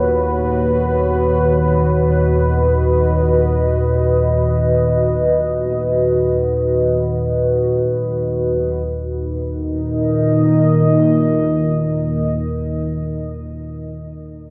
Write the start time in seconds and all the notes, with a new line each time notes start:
Already playing: D#2 A#2 F#4 B4 C#5
1.95 D#5
8.87 D#2 A#2 D#4
9.07 A#4
9.26 D#5